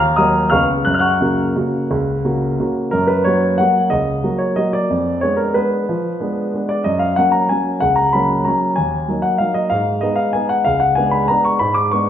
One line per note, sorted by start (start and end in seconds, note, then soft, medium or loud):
0.00 0.18 D#2 medium
0.00 0.16 F5 medium
0.00 0.16 A#5 medium
0.00 0.18 F6 loud
0.16 0.49 F#3 soft
0.16 0.49 A#3 soft
0.16 0.49 F#4 medium
0.16 0.50 D#5 medium
0.16 0.50 A#5 medium
0.16 0.52 D#6 medium
0.50 0.85 C#2 medium
0.50 0.83 C#3 soft
0.50 0.83 B3 soft
0.50 0.83 G#4 soft
0.50 0.83 F5 medium
0.50 0.84 C#6 medium
0.50 0.85 F6 medium
0.85 1.20 F#2 medium
0.85 0.93 F#6 loud
0.94 1.02 F6 medium
0.99 2.55 F#5 medium
0.99 2.55 C#6 medium
0.99 2.59 F#6 medium
1.21 1.52 C#3 soft
1.21 1.53 A#3 soft
1.21 1.53 F#4 soft
1.56 1.87 C#3 soft
1.56 1.88 A#3 soft
1.56 1.88 F#4 soft
1.91 2.24 C#2 medium
2.25 2.56 C#3 soft
2.25 2.56 A#3 soft
2.25 2.56 F#4 soft
2.60 2.90 C#3 soft
2.60 2.90 A#3 soft
2.60 2.90 F#4 soft
2.91 3.25 F#2 medium
2.91 3.08 A#4 medium
3.07 3.25 B4 medium
3.25 3.56 F#3 soft
3.25 3.56 A#3 soft
3.25 3.56 F#4 soft
3.25 3.58 C#5 medium
3.58 3.88 F#3 soft
3.58 3.89 A#3 soft
3.58 3.89 F#4 soft
3.58 3.91 F#5 medium
3.90 4.23 C#2 medium
3.90 4.40 D#5 medium
4.23 4.54 F#3 soft
4.23 4.54 A#3 soft
4.23 4.54 F#4 soft
4.38 4.57 C#5 medium
4.56 4.87 F#3 soft
4.56 4.87 A#3 soft
4.56 4.88 F#4 soft
4.56 4.74 D#5 medium
4.73 5.22 D5 medium
4.90 5.22 F2 medium
5.21 5.53 G#3 soft
5.21 5.53 B3 soft
5.21 5.53 D4 soft
5.21 5.38 C#5 medium
5.37 5.55 A#4 medium
5.54 5.85 G#3 soft
5.54 5.85 B3 soft
5.54 5.85 D4 soft
5.54 6.69 B4 medium
5.89 6.20 F3 soft
6.20 6.50 G#3 soft
6.20 6.51 B3 soft
6.20 6.51 D4 soft
6.54 6.83 G#3 soft
6.54 6.83 B3 soft
6.54 6.83 D4 soft
6.69 6.85 D5 medium
6.84 7.16 F#2 soft
6.84 7.00 D#5 medium
6.99 7.16 F5 medium
7.16 7.47 F#3 soft
7.16 7.48 A#3 soft
7.16 7.48 C#4 soft
7.16 7.33 F#5 medium
7.32 7.49 A#5 medium
7.49 7.79 F#3 soft
7.49 7.79 A#3 soft
7.49 7.79 C#4 soft
7.49 7.81 G#5 medium
7.80 8.13 C#2 medium
7.80 7.97 F#5 medium
7.96 8.13 A#5 medium
8.13 8.44 F#3 soft
8.13 8.44 A#3 soft
8.13 8.44 C#4 soft
8.13 8.46 B5 medium
8.45 8.75 F#3 soft
8.45 8.75 A#3 soft
8.45 8.75 C#4 soft
8.45 8.77 A#5 medium
8.76 9.08 D#2 medium
8.76 9.23 G#5 medium
9.08 9.37 F#3 soft
9.08 9.38 A#3 soft
9.08 9.38 D#4 soft
9.22 9.40 F#5 medium
9.38 9.69 F#3 soft
9.38 9.69 A#3 soft
9.38 9.69 D#4 soft
9.38 9.56 F5 medium
9.54 9.71 D#5 medium
9.70 10.01 G#2 medium
9.70 10.01 F5 medium
10.01 10.31 G#3 soft
10.01 10.31 B3 soft
10.01 10.32 D#4 soft
10.01 10.18 D#5 medium
10.16 10.33 F5 medium
10.33 10.63 G#3 soft
10.33 10.63 B3 soft
10.33 10.64 D#4 soft
10.33 10.50 G#5 medium
10.49 10.66 F#5 medium
10.65 10.97 C#2 medium
10.65 10.81 F5 medium
10.80 10.96 F#5 medium
10.95 11.26 G#3 soft
10.95 11.26 B3 soft
10.95 11.27 D4 soft
10.95 11.12 G#5 medium
11.11 11.28 B5 medium
11.28 11.58 G#3 soft
11.28 11.58 B3 soft
11.28 11.58 D4 soft
11.28 11.45 A#5 medium
11.45 11.60 C#6 medium
11.59 11.91 G#2 medium
11.59 11.75 B5 loud
11.74 11.91 D6 medium
11.91 12.10 G#3 soft
11.91 12.10 B3 soft
11.91 12.10 D4 soft
11.91 12.10 C#6 medium